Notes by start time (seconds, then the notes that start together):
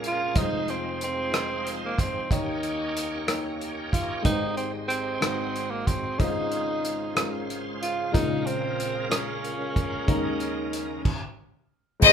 Already playing: A#1 A#2 G#3 A#3 C#4 F4 A#4 C#5
0.04 F4, closed hi-hat
0.34 F1 F2 G3 C4 D#4 F4 C5, kick, closed hi-hat
0.41 G#3
0.68 C4, closed hi-hat
1.01 C4, closed hi-hat
1.31 G#3 D#4 F4 C5, cross-stick, closed hi-hat
1.67 closed hi-hat
1.86 A#3
1.98 C4, kick, closed hi-hat
2.28 D#2 D#3 A#3 C#4 D#4 G4 C#5, kick, closed hi-hat
2.63 closed hi-hat
2.97 closed hi-hat
3.26 A#3 D#4 G4 C#5, cross-stick, closed hi-hat
3.61 closed hi-hat
3.93 F4, kick, closed hi-hat
4.22 G#1 G#2 G#3 D#4 G4 B4 C5, kick, closed hi-hat
4.31 C5
4.57 C4, closed hi-hat
4.88 C4, closed hi-hat
5.20 G#1 G#2 G#3 D#4 F#4 B4 C5, cross-stick, closed hi-hat
5.28 C5
5.56 closed hi-hat
5.71 A#3
5.87 C4, kick, closed hi-hat
6.17 G#1 G#2 C#3 G#3 C#4 D#4 F4 C5, kick, closed hi-hat
6.52 closed hi-hat
6.85 closed hi-hat
7.15 G#3 C#4 F4 A#4, cross-stick, closed hi-hat
7.50 closed hi-hat
7.82 F4, closed hi-hat
8.12 A#1 A#2 G#3 A#3 C4 D#4 F4 A#4, kick, closed hi-hat
8.19 C#3
8.46 C4, closed hi-hat
8.80 closed hi-hat
9.09 G#3 C#4 F4 A#4, cross-stick, closed hi-hat
9.45 closed hi-hat
9.76 kick, closed hi-hat
10.07 D#2 D#3 G#3 C#4 D#4 A#4, kick, closed hi-hat
10.40 closed hi-hat
10.73 closed hi-hat
11.05 kick, crash
12.00 G#1 G#2 G#3 C4 D#4 G#4 C5, kick, crash, tambourine
12.04 G#4 C5 D#5